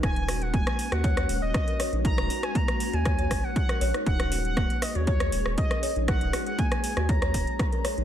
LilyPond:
<<
  \new Staff \with { instrumentName = "Analog synth lead" } { \time 4/4 \key ees \minor \tempo 4 = 119 aes''8. ges''16 aes''8. ges''4 ees''16 ees''8. r16 | bes''8. aes''16 bes''8. aes''4 ges''16 ges''8. r16 | ges''8. ges''8. ees''16 des''16 des''4 ees''8. r16 | ges''8. ges''16 aes''4 bes''4. r8 | }
  \new Staff \with { instrumentName = "Kalimba" } { \time 4/4 \key ees \minor r8 ges'16 r16 bes16 r8 ges'16 des''16 des''16 r8. bes'16 des''16 ees'16 | ees'16 r16 ges'16 r16 bes16 r8 ges'16 des''16 des''16 r8. bes'16 des''16 ees'16 | ees'16 r16 ges'16 r16 bes16 r8 ges'16 des''16 des''16 r8. bes'16 des''16 ees'16 | ees'16 r16 ges'16 r16 bes16 r8 ges'16 des''16 des''16 r8. bes'16 des''16 ees'16 | }
  \new Staff \with { instrumentName = "Ambient pad" } { \time 4/4 \key ees \minor << { ges'1~ | ges'1 | aes'1~ | aes'1 | } \\ { <aes des'>1~ | <aes des'>1~ | <aes des'>1~ | <aes des'>1 | } >> }
  \new Staff \with { instrumentName = "Analog synth bass" } { \clef bass \time 4/4 \key ees \minor ees,,4~ ees,,16 r8 ees,8. ees,,16 ees,,16 r8. bes,,16~ | bes,,16 ees,,16 r4 r16 ees,8. aes,,16 r8. bes,,16 r16 | ees,,4~ ees,,16 r8 ees,8. ees,,16 ees,,16 r8. bes,,16~ | bes,,16 ees,,16 r4 r16 ees,8. ees,,16 r4 bes,,16 | }
  \new DrumStaff \with { instrumentName = "Drums" } \drummode { \time 4/4 <hh bd ss>16 hh16 <hho ss>16 hh16 <hh bd>16 <hh ss>16 hho16 <hh ss>16 <hh bd>16 <hh ss>16 hho8 <hh bd ss>16 hh16 <hho ss>16 hh16 | <hh bd>16 <hh ss>16 hho16 <hh ss>16 <hh bd>16 <hh ss>16 hho16 hh16 <hh bd ss>16 hh16 <hho bd ss>8 <hh bd>16 <hh ss>16 hho16 <hh ss>16 | <hh bd>16 <hh ss>16 hho16 hh16 <hh bd ss>16 hh16 <hho ss>16 hh16 <hh bd>16 <hh ss>16 hho16 ss16 <hh bd>16 <hh ss>16 hho16 hh16 | <hh bd ss>16 hh16 <hho ss>16 hh16 <hh bd>16 <hh ss>16 hho16 <hh ss>16 <hh bd>16 <hh ss>16 <hho bd>16 hh16 <hh bd ss>16 hh16 <hho ss>16 hh16 | }
>>